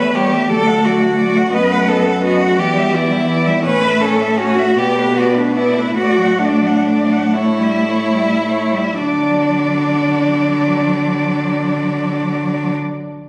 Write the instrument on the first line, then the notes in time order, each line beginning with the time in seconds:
cello
Already playing: E2 B4 E5
0.00 A3
0.15 G3 G4 C#5
0.32 A3 E5
0.49 D2 F#3 A4 D5
0.67 A3 F#5
0.85 F#3 F#4 D5
1.02 A3 F#5
1.19 F#3 D5
1.36 A3 F#5
1.52 F#2 B3 B4 D#5
1.71 A3 F#5
1.88 B3 A4 D#5
2.06 A3 F#5
2.22 B3 F#4 D#5
2.40 A3 F#5
2.57 E2 E3 G4 D5
2.75 G3 E5
2.91 E3 E4 D5
3.10 G3 E5
3.27 E3 D5
3.47 G3 E5
3.65 A2 C#4 B4 C#5
3.82 A3 E5
4.00 C#4 A4 C#5
4.18 A3 E5
4.37 C#4 F#4 C#5
4.57 A3 E5
4.75 B2 B3 G4
4.79 D5
4.95 A3
5.00 B4
5.14 B3 F#4
5.20 D5
5.34 A3 D4
5.39 B4
5.53 B3 E4 D5
5.75 A3 B4
5.95 A2 A3 F#4
6.01 D5
6.16 F#3
6.22 F#5
6.38 A3 D4
6.45 D5
6.61 F#3
6.66 F#5
6.84 A3
6.89 D5
7.07 F#3
7.12 F#5
7.31 A3 E4
7.37 C#5
7.58 G3
7.63 E5
7.85 A3 C#5
8.13 G3
8.19 E5
8.43 A3
8.49 C#5
8.72 G3 E5
8.99 D3 F#3 D4 D5